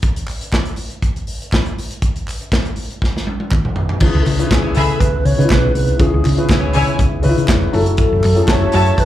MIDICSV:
0, 0, Header, 1, 7, 480
1, 0, Start_track
1, 0, Key_signature, 4, "minor"
1, 0, Tempo, 497100
1, 25, Time_signature, 4, 2, 24, 8
1, 8739, End_track
2, 0, Start_track
2, 0, Title_t, "String section"
2, 0, Program_c, 0, 48
2, 4349, Note_on_c, 0, 73, 82
2, 4349, Note_on_c, 0, 80, 91
2, 4353, Note_on_c, 0, 64, 82
2, 4458, Note_off_c, 0, 73, 0
2, 4458, Note_off_c, 0, 80, 0
2, 4460, Note_off_c, 0, 64, 0
2, 4601, Note_on_c, 0, 68, 105
2, 4601, Note_on_c, 0, 76, 100
2, 4601, Note_on_c, 0, 83, 103
2, 4800, Note_off_c, 0, 68, 0
2, 4800, Note_off_c, 0, 76, 0
2, 4800, Note_off_c, 0, 83, 0
2, 6276, Note_on_c, 0, 64, 90
2, 6279, Note_on_c, 0, 80, 95
2, 6283, Note_on_c, 0, 73, 92
2, 6381, Note_off_c, 0, 64, 0
2, 6382, Note_off_c, 0, 80, 0
2, 6384, Note_off_c, 0, 73, 0
2, 6508, Note_on_c, 0, 80, 115
2, 6510, Note_on_c, 0, 73, 106
2, 6512, Note_on_c, 0, 64, 109
2, 6712, Note_off_c, 0, 80, 0
2, 6713, Note_off_c, 0, 73, 0
2, 6714, Note_off_c, 0, 64, 0
2, 8178, Note_on_c, 0, 76, 86
2, 8184, Note_on_c, 0, 66, 89
2, 8184, Note_on_c, 0, 81, 94
2, 8289, Note_off_c, 0, 76, 0
2, 8293, Note_off_c, 0, 66, 0
2, 8293, Note_off_c, 0, 81, 0
2, 8426, Note_on_c, 0, 76, 101
2, 8426, Note_on_c, 0, 81, 122
2, 8430, Note_on_c, 0, 66, 104
2, 8630, Note_off_c, 0, 76, 0
2, 8630, Note_off_c, 0, 81, 0
2, 8632, Note_off_c, 0, 66, 0
2, 8739, End_track
3, 0, Start_track
3, 0, Title_t, "Alto flute"
3, 0, Program_c, 1, 73
3, 3877, Note_on_c, 1, 68, 97
3, 4039, Note_off_c, 1, 68, 0
3, 4058, Note_on_c, 1, 69, 57
3, 4109, Note_on_c, 1, 68, 82
3, 4123, Note_off_c, 1, 69, 0
3, 4581, Note_on_c, 1, 69, 93
3, 4595, Note_off_c, 1, 68, 0
3, 4818, Note_on_c, 1, 71, 101
3, 4832, Note_off_c, 1, 69, 0
3, 5069, Note_on_c, 1, 73, 113
3, 5084, Note_off_c, 1, 71, 0
3, 5307, Note_on_c, 1, 71, 100
3, 5321, Note_off_c, 1, 73, 0
3, 5548, Note_off_c, 1, 71, 0
3, 5554, Note_on_c, 1, 71, 91
3, 5802, Note_on_c, 1, 68, 92
3, 5817, Note_off_c, 1, 71, 0
3, 6514, Note_off_c, 1, 68, 0
3, 7481, Note_on_c, 1, 69, 93
3, 7697, Note_off_c, 1, 69, 0
3, 7724, Note_on_c, 1, 69, 118
3, 8204, Note_on_c, 1, 73, 119
3, 8218, Note_off_c, 1, 69, 0
3, 8685, Note_on_c, 1, 71, 111
3, 8699, Note_off_c, 1, 73, 0
3, 8739, Note_off_c, 1, 71, 0
3, 8739, End_track
4, 0, Start_track
4, 0, Title_t, "Grand piano"
4, 0, Program_c, 2, 0
4, 3872, Note_on_c, 2, 49, 68
4, 3873, Note_on_c, 2, 61, 64
4, 3879, Note_on_c, 2, 64, 64
4, 3884, Note_on_c, 2, 71, 78
4, 4025, Control_c, 2, 64, 127
4, 4106, Note_off_c, 2, 49, 0
4, 4107, Note_off_c, 2, 61, 0
4, 4109, Note_off_c, 2, 64, 0
4, 4112, Note_off_c, 2, 71, 0
4, 4233, Note_on_c, 2, 49, 72
4, 4234, Note_on_c, 2, 61, 65
4, 4245, Note_on_c, 2, 64, 65
4, 4248, Note_on_c, 2, 71, 77
4, 4854, Note_off_c, 2, 49, 0
4, 4854, Note_off_c, 2, 61, 0
4, 4860, Note_off_c, 2, 64, 0
4, 4861, Note_off_c, 2, 71, 0
4, 5193, Note_on_c, 2, 49, 72
4, 5196, Note_on_c, 2, 61, 66
4, 5196, Note_on_c, 2, 63, 59
4, 5205, Note_on_c, 2, 71, 80
4, 5251, Note_off_c, 2, 63, 0
4, 5257, Note_on_c, 2, 64, 76
4, 5579, Note_off_c, 2, 49, 0
4, 5581, Note_off_c, 2, 61, 0
4, 5585, Note_off_c, 2, 71, 0
4, 5611, Note_off_c, 2, 64, 0
4, 5778, Note_on_c, 2, 49, 73
4, 5785, Note_on_c, 2, 61, 68
4, 5788, Note_on_c, 2, 64, 77
4, 5792, Note_on_c, 2, 68, 87
4, 6018, Note_off_c, 2, 49, 0
4, 6021, Note_off_c, 2, 61, 0
4, 6023, Note_off_c, 2, 64, 0
4, 6025, Note_off_c, 2, 68, 0
4, 6150, Note_on_c, 2, 49, 69
4, 6155, Note_on_c, 2, 61, 68
4, 6159, Note_on_c, 2, 64, 68
4, 6166, Note_on_c, 2, 71, 78
4, 6695, Note_off_c, 2, 49, 0
4, 6697, Note_off_c, 2, 61, 0
4, 6699, Note_off_c, 2, 64, 0
4, 6702, Note_off_c, 2, 71, 0
4, 6974, Note_on_c, 2, 49, 89
4, 6979, Note_on_c, 2, 61, 77
4, 6984, Note_on_c, 2, 63, 57
4, 6990, Note_on_c, 2, 71, 94
4, 7042, Note_on_c, 2, 64, 89
4, 7046, Note_off_c, 2, 63, 0
4, 7449, Note_off_c, 2, 49, 0
4, 7451, Note_off_c, 2, 61, 0
4, 7452, Note_off_c, 2, 64, 0
4, 7456, Note_on_c, 2, 54, 80
4, 7457, Note_off_c, 2, 71, 0
4, 7465, Note_on_c, 2, 61, 78
4, 7467, Note_on_c, 2, 64, 78
4, 7474, Note_on_c, 2, 69, 90
4, 7477, Control_c, 2, 64, 0
4, 7668, Control_c, 2, 64, 127
4, 7941, Note_off_c, 2, 54, 0
4, 7945, Note_off_c, 2, 61, 0
4, 7946, Note_off_c, 2, 64, 0
4, 7950, Note_off_c, 2, 69, 0
4, 8063, Note_on_c, 2, 54, 74
4, 8071, Note_on_c, 2, 61, 72
4, 8074, Note_on_c, 2, 64, 64
4, 8076, Note_on_c, 2, 68, 70
4, 8129, Note_off_c, 2, 68, 0
4, 8137, Note_on_c, 2, 69, 84
4, 8687, Note_off_c, 2, 54, 0
4, 8691, Note_off_c, 2, 61, 0
4, 8692, Note_off_c, 2, 64, 0
4, 8724, Note_off_c, 2, 69, 0
4, 8739, End_track
5, 0, Start_track
5, 0, Title_t, "French horn section"
5, 0, Program_c, 3, 60
5, 3866, Note_on_c, 3, 64, 83
5, 3867, Note_on_c, 3, 49, 68
5, 3867, Note_on_c, 3, 59, 69
5, 3868, Note_on_c, 3, 52, 67
5, 3869, Note_on_c, 3, 56, 60
5, 7428, Note_off_c, 3, 59, 0
5, 7429, Note_off_c, 3, 49, 0
5, 7430, Note_off_c, 3, 56, 0
5, 7472, Note_on_c, 3, 54, 68
5, 7473, Note_on_c, 3, 57, 70
5, 7477, Note_on_c, 3, 49, 82
5, 8739, Note_off_c, 3, 49, 0
5, 8739, Note_off_c, 3, 52, 0
5, 8739, Note_off_c, 3, 54, 0
5, 8739, Note_off_c, 3, 57, 0
5, 8739, Note_off_c, 3, 64, 0
5, 8739, End_track
6, 0, Start_track
6, 0, Title_t, "Fingered electric bass"
6, 0, Program_c, 4, 33
6, 3877, Note_on_c, 4, 37, 119
6, 3959, Note_off_c, 4, 37, 0
6, 4006, Note_on_c, 4, 37, 104
6, 4078, Note_off_c, 4, 37, 0
6, 4117, Note_on_c, 4, 49, 107
6, 4274, Note_off_c, 4, 49, 0
6, 4360, Note_on_c, 4, 37, 107
6, 4515, Note_off_c, 4, 37, 0
6, 4604, Note_on_c, 4, 49, 100
6, 4758, Note_off_c, 4, 49, 0
6, 4836, Note_on_c, 4, 37, 106
6, 4992, Note_off_c, 4, 37, 0
6, 5073, Note_on_c, 4, 49, 108
6, 5156, Note_off_c, 4, 49, 0
6, 5203, Note_on_c, 4, 49, 100
6, 5275, Note_off_c, 4, 49, 0
6, 5320, Note_on_c, 4, 35, 97
6, 5475, Note_off_c, 4, 35, 0
6, 5553, Note_on_c, 4, 36, 89
6, 5710, Note_off_c, 4, 36, 0
6, 5793, Note_on_c, 4, 37, 127
6, 5875, Note_off_c, 4, 37, 0
6, 5929, Note_on_c, 4, 37, 96
6, 5999, Note_off_c, 4, 37, 0
6, 6044, Note_on_c, 4, 49, 100
6, 6197, Note_off_c, 4, 49, 0
6, 6275, Note_on_c, 4, 37, 107
6, 6431, Note_off_c, 4, 37, 0
6, 6528, Note_on_c, 4, 49, 99
6, 6679, Note_off_c, 4, 49, 0
6, 6758, Note_on_c, 4, 37, 109
6, 6913, Note_off_c, 4, 37, 0
6, 7003, Note_on_c, 4, 49, 106
6, 7082, Note_off_c, 4, 49, 0
6, 7122, Note_on_c, 4, 49, 89
6, 7194, Note_off_c, 4, 49, 0
6, 7229, Note_on_c, 4, 29, 96
6, 7387, Note_off_c, 4, 29, 0
6, 7477, Note_on_c, 4, 30, 99
6, 7716, Note_off_c, 4, 30, 0
6, 7846, Note_on_c, 4, 30, 100
6, 7916, Note_off_c, 4, 30, 0
6, 7966, Note_on_c, 4, 42, 123
6, 8118, Note_off_c, 4, 42, 0
6, 8191, Note_on_c, 4, 30, 110
6, 8348, Note_off_c, 4, 30, 0
6, 8439, Note_on_c, 4, 42, 105
6, 8593, Note_off_c, 4, 42, 0
6, 8674, Note_on_c, 4, 30, 96
6, 8739, Note_off_c, 4, 30, 0
6, 8739, End_track
7, 0, Start_track
7, 0, Title_t, "Drums"
7, 23, Note_on_c, 9, 42, 57
7, 28, Note_on_c, 9, 36, 114
7, 119, Note_off_c, 9, 42, 0
7, 124, Note_off_c, 9, 36, 0
7, 158, Note_on_c, 9, 42, 52
7, 254, Note_off_c, 9, 42, 0
7, 267, Note_on_c, 9, 39, 69
7, 273, Note_on_c, 9, 46, 68
7, 364, Note_off_c, 9, 39, 0
7, 370, Note_off_c, 9, 46, 0
7, 399, Note_on_c, 9, 42, 58
7, 495, Note_off_c, 9, 42, 0
7, 507, Note_on_c, 9, 36, 102
7, 510, Note_on_c, 9, 39, 89
7, 516, Note_on_c, 9, 38, 91
7, 526, Note_off_c, 9, 39, 0
7, 526, Note_on_c, 9, 39, 79
7, 604, Note_off_c, 9, 36, 0
7, 613, Note_off_c, 9, 38, 0
7, 622, Note_off_c, 9, 39, 0
7, 632, Note_on_c, 9, 42, 43
7, 729, Note_off_c, 9, 42, 0
7, 736, Note_on_c, 9, 46, 59
7, 833, Note_off_c, 9, 46, 0
7, 876, Note_on_c, 9, 42, 35
7, 972, Note_off_c, 9, 42, 0
7, 989, Note_on_c, 9, 36, 96
7, 995, Note_on_c, 9, 42, 56
7, 1086, Note_off_c, 9, 36, 0
7, 1091, Note_off_c, 9, 42, 0
7, 1122, Note_on_c, 9, 42, 39
7, 1218, Note_off_c, 9, 42, 0
7, 1227, Note_on_c, 9, 46, 56
7, 1324, Note_off_c, 9, 46, 0
7, 1371, Note_on_c, 9, 42, 51
7, 1467, Note_off_c, 9, 42, 0
7, 1471, Note_on_c, 9, 39, 82
7, 1473, Note_on_c, 9, 36, 112
7, 1486, Note_on_c, 9, 38, 121
7, 1495, Note_off_c, 9, 39, 0
7, 1495, Note_on_c, 9, 39, 97
7, 1570, Note_off_c, 9, 36, 0
7, 1582, Note_off_c, 9, 38, 0
7, 1592, Note_off_c, 9, 39, 0
7, 1602, Note_on_c, 9, 42, 40
7, 1699, Note_off_c, 9, 42, 0
7, 1723, Note_on_c, 9, 46, 61
7, 1820, Note_off_c, 9, 46, 0
7, 1842, Note_on_c, 9, 42, 54
7, 1939, Note_off_c, 9, 42, 0
7, 1951, Note_on_c, 9, 42, 61
7, 1953, Note_on_c, 9, 36, 103
7, 2048, Note_off_c, 9, 42, 0
7, 2049, Note_off_c, 9, 36, 0
7, 2083, Note_on_c, 9, 42, 46
7, 2180, Note_off_c, 9, 42, 0
7, 2201, Note_on_c, 9, 39, 64
7, 2202, Note_on_c, 9, 46, 63
7, 2298, Note_off_c, 9, 39, 0
7, 2298, Note_off_c, 9, 46, 0
7, 2327, Note_on_c, 9, 42, 50
7, 2423, Note_off_c, 9, 42, 0
7, 2431, Note_on_c, 9, 36, 106
7, 2442, Note_on_c, 9, 38, 102
7, 2442, Note_on_c, 9, 39, 86
7, 2452, Note_off_c, 9, 39, 0
7, 2452, Note_on_c, 9, 39, 76
7, 2528, Note_off_c, 9, 36, 0
7, 2539, Note_off_c, 9, 38, 0
7, 2548, Note_off_c, 9, 39, 0
7, 2561, Note_on_c, 9, 42, 42
7, 2658, Note_off_c, 9, 42, 0
7, 2664, Note_on_c, 9, 46, 62
7, 2761, Note_off_c, 9, 46, 0
7, 2805, Note_on_c, 9, 42, 40
7, 2902, Note_off_c, 9, 42, 0
7, 2915, Note_on_c, 9, 36, 94
7, 2932, Note_on_c, 9, 38, 49
7, 3011, Note_off_c, 9, 36, 0
7, 3029, Note_off_c, 9, 38, 0
7, 3058, Note_on_c, 9, 38, 49
7, 3155, Note_off_c, 9, 38, 0
7, 3156, Note_on_c, 9, 48, 62
7, 3253, Note_off_c, 9, 48, 0
7, 3283, Note_on_c, 9, 48, 58
7, 3380, Note_off_c, 9, 48, 0
7, 3393, Note_on_c, 9, 39, 86
7, 3394, Note_on_c, 9, 36, 117
7, 3396, Note_on_c, 9, 47, 77
7, 3490, Note_off_c, 9, 39, 0
7, 3491, Note_off_c, 9, 36, 0
7, 3493, Note_off_c, 9, 47, 0
7, 3524, Note_on_c, 9, 45, 68
7, 3620, Note_off_c, 9, 45, 0
7, 3628, Note_on_c, 9, 43, 86
7, 3725, Note_off_c, 9, 43, 0
7, 3758, Note_on_c, 9, 43, 83
7, 3855, Note_off_c, 9, 43, 0
7, 3864, Note_on_c, 9, 49, 90
7, 3871, Note_on_c, 9, 36, 113
7, 3961, Note_off_c, 9, 49, 0
7, 3968, Note_off_c, 9, 36, 0
7, 4119, Note_on_c, 9, 46, 81
7, 4121, Note_on_c, 9, 39, 69
7, 4215, Note_off_c, 9, 46, 0
7, 4218, Note_off_c, 9, 39, 0
7, 4241, Note_on_c, 9, 42, 60
7, 4338, Note_off_c, 9, 42, 0
7, 4353, Note_on_c, 9, 36, 122
7, 4359, Note_on_c, 9, 42, 60
7, 4362, Note_on_c, 9, 39, 101
7, 4363, Note_on_c, 9, 38, 116
7, 4372, Note_off_c, 9, 39, 0
7, 4372, Note_on_c, 9, 39, 100
7, 4449, Note_off_c, 9, 36, 0
7, 4455, Note_off_c, 9, 42, 0
7, 4460, Note_off_c, 9, 38, 0
7, 4469, Note_off_c, 9, 39, 0
7, 4583, Note_on_c, 9, 46, 68
7, 4680, Note_off_c, 9, 46, 0
7, 4720, Note_on_c, 9, 42, 41
7, 4817, Note_off_c, 9, 42, 0
7, 4833, Note_on_c, 9, 36, 108
7, 4839, Note_on_c, 9, 42, 69
7, 4929, Note_off_c, 9, 36, 0
7, 4936, Note_off_c, 9, 42, 0
7, 5074, Note_on_c, 9, 46, 59
7, 5171, Note_off_c, 9, 46, 0
7, 5218, Note_on_c, 9, 42, 59
7, 5309, Note_on_c, 9, 39, 97
7, 5314, Note_on_c, 9, 36, 123
7, 5315, Note_off_c, 9, 42, 0
7, 5323, Note_on_c, 9, 42, 67
7, 5324, Note_on_c, 9, 38, 127
7, 5334, Note_off_c, 9, 39, 0
7, 5334, Note_on_c, 9, 39, 114
7, 5411, Note_off_c, 9, 36, 0
7, 5420, Note_off_c, 9, 42, 0
7, 5421, Note_off_c, 9, 38, 0
7, 5430, Note_off_c, 9, 39, 0
7, 5555, Note_on_c, 9, 46, 65
7, 5652, Note_off_c, 9, 46, 0
7, 5676, Note_on_c, 9, 42, 54
7, 5773, Note_off_c, 9, 42, 0
7, 5788, Note_on_c, 9, 42, 70
7, 5790, Note_on_c, 9, 36, 109
7, 5885, Note_off_c, 9, 42, 0
7, 5886, Note_off_c, 9, 36, 0
7, 6034, Note_on_c, 9, 46, 71
7, 6037, Note_on_c, 9, 39, 83
7, 6130, Note_off_c, 9, 46, 0
7, 6134, Note_off_c, 9, 39, 0
7, 6159, Note_on_c, 9, 42, 56
7, 6256, Note_off_c, 9, 42, 0
7, 6271, Note_on_c, 9, 36, 111
7, 6272, Note_on_c, 9, 39, 91
7, 6279, Note_on_c, 9, 42, 62
7, 6283, Note_on_c, 9, 38, 121
7, 6292, Note_off_c, 9, 39, 0
7, 6292, Note_on_c, 9, 39, 100
7, 6368, Note_off_c, 9, 36, 0
7, 6375, Note_off_c, 9, 42, 0
7, 6380, Note_off_c, 9, 38, 0
7, 6389, Note_off_c, 9, 39, 0
7, 6504, Note_on_c, 9, 46, 66
7, 6600, Note_off_c, 9, 46, 0
7, 6637, Note_on_c, 9, 42, 41
7, 6734, Note_off_c, 9, 42, 0
7, 6750, Note_on_c, 9, 36, 109
7, 6756, Note_on_c, 9, 42, 67
7, 6847, Note_off_c, 9, 36, 0
7, 6852, Note_off_c, 9, 42, 0
7, 6980, Note_on_c, 9, 46, 65
7, 7077, Note_off_c, 9, 46, 0
7, 7127, Note_on_c, 9, 42, 61
7, 7223, Note_off_c, 9, 42, 0
7, 7224, Note_on_c, 9, 39, 101
7, 7226, Note_on_c, 9, 36, 124
7, 7231, Note_on_c, 9, 42, 72
7, 7233, Note_on_c, 9, 38, 127
7, 7242, Note_off_c, 9, 39, 0
7, 7242, Note_on_c, 9, 39, 112
7, 7323, Note_off_c, 9, 36, 0
7, 7328, Note_off_c, 9, 42, 0
7, 7329, Note_off_c, 9, 38, 0
7, 7339, Note_off_c, 9, 39, 0
7, 7468, Note_on_c, 9, 46, 72
7, 7565, Note_off_c, 9, 46, 0
7, 7590, Note_on_c, 9, 42, 60
7, 7687, Note_off_c, 9, 42, 0
7, 7699, Note_on_c, 9, 42, 70
7, 7707, Note_on_c, 9, 36, 115
7, 7795, Note_off_c, 9, 42, 0
7, 7804, Note_off_c, 9, 36, 0
7, 7949, Note_on_c, 9, 46, 79
7, 7955, Note_on_c, 9, 39, 72
7, 8046, Note_off_c, 9, 46, 0
7, 8052, Note_off_c, 9, 39, 0
7, 8077, Note_on_c, 9, 42, 56
7, 8174, Note_off_c, 9, 42, 0
7, 8187, Note_on_c, 9, 36, 126
7, 8189, Note_on_c, 9, 39, 99
7, 8189, Note_on_c, 9, 42, 65
7, 8193, Note_on_c, 9, 38, 116
7, 8203, Note_off_c, 9, 39, 0
7, 8203, Note_on_c, 9, 39, 88
7, 8283, Note_off_c, 9, 36, 0
7, 8285, Note_off_c, 9, 42, 0
7, 8290, Note_off_c, 9, 38, 0
7, 8299, Note_off_c, 9, 39, 0
7, 8421, Note_on_c, 9, 46, 67
7, 8517, Note_off_c, 9, 46, 0
7, 8560, Note_on_c, 9, 42, 43
7, 8656, Note_off_c, 9, 42, 0
7, 8670, Note_on_c, 9, 36, 104
7, 8679, Note_on_c, 9, 42, 71
7, 8739, Note_off_c, 9, 36, 0
7, 8739, Note_off_c, 9, 42, 0
7, 8739, End_track
0, 0, End_of_file